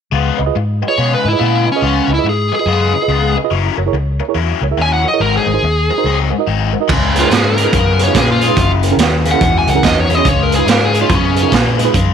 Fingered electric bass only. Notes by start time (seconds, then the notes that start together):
0.12 C#2
0.39 C#2
0.55 G#2
0.98 B2
1.24 G#2
1.40 A#2
1.82 C#2
2.08 C#2
2.24 G#2
2.66 F#2
3.08 C#2
3.51 F#1
3.78 F#1
3.93 C#2
4.35 E2
4.61 C#2
4.77 D#2
5.20 G#1
5.46 G#1
5.62 D#2
6.04 C#2
6.47 G#1
6.89 C#2
7.31 G#2
7.72 F#2
8.15 A#2
8.57 F#1
8.97 D#2
9.41 E2
9.67 C#2
9.83 E2
10.25 C#2
10.67 G#2
11.10 F#2
11.52 A#2
11.94 F#2